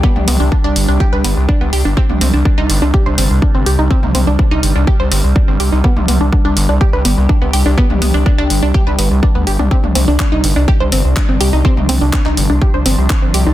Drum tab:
HH |--o---o---o---o-|--o---o---o---o-|--o---o---o---o-|--o---o---o---o-|
CP |----------------|----------------|----------------|----------------|
T2 |-oo-------------|-oo-------------|-oo-------------|-oo-------------|
BD |o---o---o---o---|o---o---o---o---|o---o---o---o---|o---o---o---o---|

HH |--o---o---o---o-|--o---o---o---o-|--o---o---o---o-|
CP |----------------|----x-------x---|----xx------x---|
T2 |-oo------------o|-oo-------------|-oo-------------|
BD |o---o---o---o---|o---o---o---o---|o---o---o---o---|